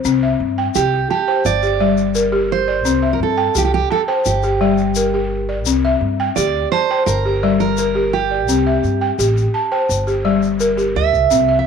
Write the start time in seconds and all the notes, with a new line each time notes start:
Already playing: C5
0.04 C2 C4, shaker
0.23 E5
0.40 G2
0.58 G5
0.75 C2 G4, shaker
1.10 G4 A5
1.28 C5 G5
1.45 G1 D5, shaker
1.63 G4, shaker
1.80 G3 D5
1.98 shaker
2.15 A#4, shaker
2.32 G4
2.52 C5
2.68 D5
2.85 C2 C4, shaker
3.02 E5
3.13 A#4
3.20 G2 A4
3.37 G5
3.55 C2 G4, shaker
3.65 G4
3.74 G4
3.90 A4 A5
4.08 C5 G5
4.25 G1 G4, shaker
4.43 G4, shaker
4.61 G3 D5
4.78 shaker
4.95 A#4, shaker
5.14 G4
5.49 D5
5.66 C2 C4, shaker
5.85 E5
6.01 G2
6.20 G5
6.36 D2 G4 D5, shaker
6.72 C5 A5
6.91 C5 G5
7.06 G1 A#4, shaker
7.25 G4
7.43 G3 D5
7.60 A#4, shaker
7.77 A#4, shaker
7.95 G4
8.13 G4
8.31 D5
8.48 C2 C4, shaker
8.67 E5
8.83 G2, shaker
9.01 G5
9.19 A1 G4, shaker
9.37 shaker
9.54 A5
9.72 C5 G5
9.89 G1, shaker
10.07 G4, shaker
10.25 G3 D5
10.43 shaker
10.60 A#4, shaker
10.77 G4, shaker
10.95 D2 E5
11.13 C2, shaker
11.31 C2 C4, shaker
11.49 E5
11.59 E5